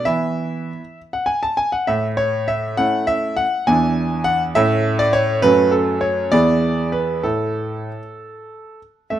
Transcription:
0.05 0.70 E3 medium
0.05 0.79 B3 soft
0.05 0.79 E4 soft
0.05 0.97 E5 medium
1.13 1.28 F#5 medium
1.26 1.42 G#5 medium
1.43 1.58 A5 medium
1.57 1.73 G#5 medium
1.72 1.88 F#5 medium
1.87 2.75 A2 medium
1.87 2.06 E5 medium
2.17 2.48 C#5 medium
2.48 2.75 E5 medium
2.77 3.42 A3 medium
2.77 3.42 C#4 medium
2.77 3.42 E4 medium
2.77 3.05 F#5 loud
3.07 3.34 E5 loud
3.37 3.67 F#5 medium
3.67 4.52 E2 medium
3.67 4.50 B3 soft
3.67 4.51 D4 medium
3.67 4.51 E4 medium
3.67 4.21 G#5 loud
4.24 4.42 F#5 loud
4.55 5.40 A2 medium
4.55 5.39 A3 medium
4.55 5.39 C#4 medium
4.55 5.39 E4 medium
4.55 4.94 E5 loud
4.99 5.13 D5 loud
5.13 5.39 C#5 loud
5.42 6.29 F#2 medium
5.42 6.28 A3 medium
5.42 6.28 C#4 medium
5.42 6.28 F#4 medium
5.42 5.72 B4 loud
5.71 6.01 A4 medium
6.01 6.31 C#5 medium
6.32 7.21 E2 medium
6.32 7.20 B3 medium
6.32 7.20 E4 medium
6.32 7.20 G#4 medium
6.32 6.88 D5 loud
6.92 7.23 B4 medium
7.23 7.89 A2 soft
7.23 7.98 E4 soft
7.23 8.79 A4 medium
9.10 9.20 A3 medium
9.10 9.20 E5 medium

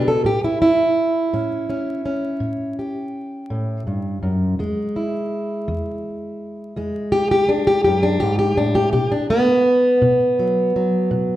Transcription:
0.00 0.25 B2 medium
0.00 0.22 B3 soft
0.08 0.26 A4 medium
0.24 0.90 A2 medium
0.24 0.44 G4 loud
0.44 0.61 E4 medium
0.62 2.79 E4 loud
1.33 1.99 A2 medium
1.33 1.68 C#4 soft
1.70 2.04 C#4 soft
2.06 4.55 C#4 soft
2.40 3.07 A2 medium
2.79 4.56 G4 soft
3.50 3.86 A2 medium
3.87 4.22 G2 medium
4.23 4.59 F#2 medium
4.59 5.25 E2 medium
4.59 6.76 G#3 soft
4.96 7.12 E4 soft
5.68 6.33 E2 medium
6.76 7.42 E2 medium
6.76 8.94 G#3 soft
7.12 7.30 G4 loud
7.31 7.49 G4 loud
7.49 7.67 D4 medium
7.67 7.83 G4 loud
7.84 8.21 F#2 medium
7.84 8.03 G4 medium
8.03 8.21 D4 loud
8.20 8.57 G#2 medium
8.20 8.38 G4 loud
8.39 8.57 G4 loud
8.57 8.94 A2 medium
8.57 8.76 D4 medium
8.75 8.92 G4 loud
8.93 9.59 B2 medium
8.93 9.12 G4 medium
9.12 9.30 D4 medium
9.30 11.36 B3 loud
10.02 10.67 B2 medium
10.39 10.75 F#3 medium
10.76 11.36 F#3 medium
11.11 11.36 B2 medium

